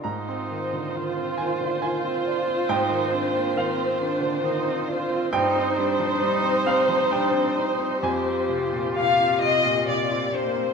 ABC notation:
X:1
M:3/4
L:1/16
Q:1/4=67
K:Fdor
V:1 name="Violin section"
c12- | c12 | c12- | c4 f2 e2 d2 c2 |]
V:2 name="Viola"
F12- | F12 | E12 | G12 |]
V:3 name="Cello"
E4 F4 F4 | E2 D2 C2 D2 E2 F2 | E2 D2 E2 C2 D2 E2 | F8- F2 B,2 |]
V:4 name="Grand piano"
b6 a2 a4 | g4 f4 z4 | g6 f2 g4 | a8 z4 |]
V:5 name="Grand piano" clef=bass
A,, C E, D, E, C E, D, E, C D C | A,, E, C B, E, C E, D, E, C D C | G,, C G, F, G, C G, F, G, C D C | F,, C C, B,, C, C C, B,, C, C D C |]